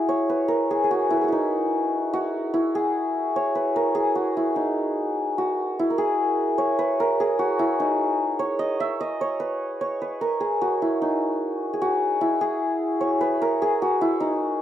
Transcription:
Already playing: E4 F#4 G#4
0.09 C#5
0.29 B4
0.48 A#4
0.71 G#4
0.84 G#4
0.91 F#4
1.09 E4 C#5
1.14 A#4 B4
1.21 F#4 G#4
1.28 D#4 E4
2.13 F#4
2.54 E4
2.75 G#4
3.36 C#5
3.55 B4
3.76 A#4
3.95 G#4
4.15 F#4
4.37 E4
4.56 D#4
5.38 F#4
5.79 E4
5.90 A#4
5.98 G#4
6.58 C#5
6.79 B4
7.00 A#4
7.20 G#4
7.39 F#4
7.59 E4
7.80 D#4
8.39 C#5
8.59 D#5
8.80 E5
9.00 D#5
9.21 C#5
9.40 B4
9.81 C#5
10.02 B4
10.21 A#4
10.40 G#4
10.62 F#4
10.82 E4
11.02 D#4
11.73 G#4
11.82 F#4
12.21 E4
12.41 G#4
13.01 C#5
13.21 B4
13.42 A#4
13.62 G#4
13.82 F#4
14.01 E4
14.20 D#4

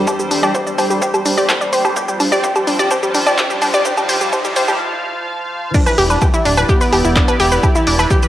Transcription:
Already playing: E2 G3 D4 A4 C5, riser
0.07 G4 C5, kick, low woodblock, shaker
0.19 G3 G4, shaker
0.31 G3 D4, open hi-hat, shaker
0.43 G4 D5, low woodblock, shaker
0.55 G3 C5, kick, shaker
0.67 G3 D5, shaker
0.78 G4 C5, open hi-hat, low woodblock, shaker
0.90 G3 G4, shaker
1.02 G4 C5, kick, shaker
1.14 G3 G4, low woodblock, shaker
1.25 G3 D4, open hi-hat, shaker
1.38 G4 D5, shaker
1.49 G3 C5, kick, clap, low woodblock, shaker
1.61 G3 D5, shaker
1.73 G4 C5, open hi-hat, shaker
1.85 G3 G4, low woodblock, shaker
1.96 F3 F4 G4 C5 G5 A5, kick, shaker
2.08 G3 G4, shaker
2.20 G3 D4, open hi-hat, low woodblock, shaker
2.32 G4 D5, shaker
2.44 G4 C5, kick, shaker
2.56 G3 G4, low woodblock, shaker
2.67 G3 D4, open hi-hat, shaker
2.79 G4 D5, shaker
2.91 G4 C5, kick, low woodblock, shaker
3.03 G3 G4, shaker
3.15 G3 D4, open hi-hat, shaker
3.27 G4 D5, low woodblock, shaker
3.38 G4 C5, kick, clap, shaker
3.50 G3 G4, shaker
3.62 G3 D4, open hi-hat, low woodblock, shaker
3.74 G4 D5, shaker
3.85 G4 C5 F5, kick, shaker
3.97 G3 G4, low woodblock, shaker
4.09 G4 C5, open hi-hat, shaker
4.21 G3 G4, shaker
4.33 G4 C5, kick, low woodblock, shaker
4.45 G3 G4, shaker
4.56 G4 C5, open hi-hat, shaker
4.68 G3 G4, low woodblock, shaker
5.74 D4 E4 G4 D5, kick, crash, shaker
5.86 E3 B4 B5, low woodblock, shaker
5.98 E1 E3 G4 G5, open hi-hat
6.10 D4 B4 B5, shaker
6.22 E3 G4 G5, kick, low woodblock, shaker
6.34 E3 E4 E5, shaker
6.45 D1 D4 D5, open hi-hat
6.57 E3 B4 B5, low woodblock, shaker
6.69 B3 G4 G5, kick, shaker
6.81 B4 B5, open hi-hat, shaker
6.92 E1 G4 G5, open hi-hat, low woodblock
7.04 E1 E4 E5, shaker
7.16 D4 D5, kick, clap, shaker
7.28 B4 B5, low woodblock, shaker
7.40 E1 G4 G5, open hi-hat
7.52 B4 B5, shaker
7.63 E4 G4 G5, kick, low woodblock, shaker
7.75 E3 E4 E5, shaker
7.87 E1 E3 D4 D5, open hi-hat
7.99 E4 B4 B5, low woodblock, shaker
8.11 E3 G4 G5, kick, shaker
8.23 E3 B4 B5, shaker

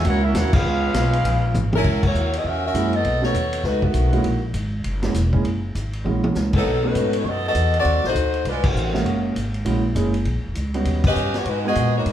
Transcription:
0.05 C#2 A#3 C#4 E4 F#4 A#4 C#5 F#5, kick, ride
0.23 A#3 C#4 E4 F#4 A#4 E5
0.34 D#2 A#3 C#4 E4 F#4 A#4 C#5 F#5, kick, snare, hi-hat pedal, ride
0.53 G#3 B3 C#4 F4 G#4 B4 F5, kick, crash
0.65 C#2
0.94 B1, kick, snare, hi-hat pedal, ride
1.13 ride
1.25 A#1, kick, ride
1.54 G#1, hi-hat pedal, high tom
1.73 F#3 C#4 E4 A#4, high tom
1.84 C#2, kick, crash
2.03 A#3 E4 F#4 C#5, kick, crash
2.14 D#2, hi-hat pedal
2.33 B3 E4 G#4 D#5, ride
2.44 E2 C#4 F#4 A#4 E5, kick
2.65 C#4 F#4 A#4 E5
2.74 F#2 G#3 A#3 C#4 E4 F#4, kick, hi-hat pedal, ride
2.93 B3 F#4 A4 D#5, ride
3.04 B1, kick, ride
3.22 A3 B3 C#4 D#4 F#4 A4 C#5, snare
3.34 D#2, kick, hi-hat pedal, ride
3.53 ride
3.64 C#2 A3 D#4 F#4 B4, kick, snare
3.82 D#3 A3 B3 F#4, kick
3.94 B1, kick, hi-hat pedal, ride
4.12 G#3 A#3 C#4 E4 F#4, ride
4.24 A#1, kick, ride
4.54 G#1, kick, hi-hat pedal, ride
4.84 F#1, kick, ride
5.02 G#3 A#3 C#4 E4 F#4, snare, ride
5.14 E1, kick, snare, hi-hat pedal, ride
5.33 G#3 A#3 C#4 E4 G#4, kick
5.45 F#1, kick, ride
5.75 G#1, kick, hi-hat pedal, ride
5.93 ride
6.04 A#1 G#3 A#3 C#4 E4 F#4, high tom
6.24 high tom
6.35 C#2, snare, hi-hat pedal
6.53 F#3 B3 D#4 A4, kick, crash
6.65 B1
6.83 A3 B3 C#4 D#4 F#4 B4
6.95 G#2, kick, hi-hat pedal, ride
7.13 ride
7.18 A3 D#4 F#4 C#5
7.24 F#2 C#5, kick
7.29 B3 F#4 A4 D#5
7.48 B3 F#4 A4 D#5
7.55 E2, kick, hi-hat pedal, ride
7.74 ride
7.79 C4 F#4 A4 D5
7.85 D#2, kick, ride
7.96 C2
8.04 A1 A3 D#4 F#4 C5, snare
8.15 D2, kick, hi-hat pedal, ride
8.34 ride
8.45 C2 G#3 D4 F4 B4, kick, ride
8.64 D#3 A3 C4 F#4, kick, crash
8.75 A1, hi-hat pedal
8.93 G#3 A#3 C#4 F#4 E5, snare
9.05 F#1, kick, ride
9.36 G#1, kick, hi-hat pedal, ride
9.54 ride
9.65 A#1 G#3 A#3 C#4 E4 F#4, kick, ride
9.95 F#1 G#3 A#3 C#4 E4 G#4, kick, hi-hat pedal, ride
10.14 ride
10.25 A#1, kick, ride
10.36 G#1
10.46 F1
10.55 C#2, kick, hi-hat pedal, ride
10.74 G3 B3 C#4 D#4 F#4, ride
10.85 D#2, kick, ride
11.04 C#4 G4 B4 D#5, kick, crash
11.15 G2, hi-hat pedal
11.34 B3 F#4 G4 C#5, snare, ride
11.45 G#2 G#3 D#4 F#4 B4, kick, ride
11.64 G#3 B3 D#4 F#4 G#4 A#4 D#5
11.75 A#2, kick, hi-hat pedal, ride
11.97 A#3 D#4 F#4 C#5
12.06 G#2 F#4, kick, ride

